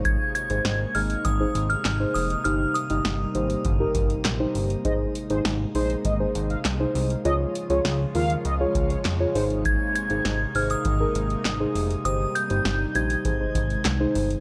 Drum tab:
HH |x-xxx-oxx-xxx-ox|x-xxx-xxx-xxx-ox|x-xxx-oxx-xxx-ox|x-xxx-oxx-xxx-ox|
CP |------------x---|------------x---|------------x---|------------x---|
SD |----o-------o---|----o-------o---|----o-------o---|----o-------o---|
BD |o-------o-------|--------o-o-----|o-------o-------|----------o-----|

HH |x-xxx-oxx-xxx-ox|x-xxx-xxx-xxx-ox|
CP |------------x---|------------x---|
SD |----o-------o---|----o-------o---|
BD |o-------o-------|--------o-o-----|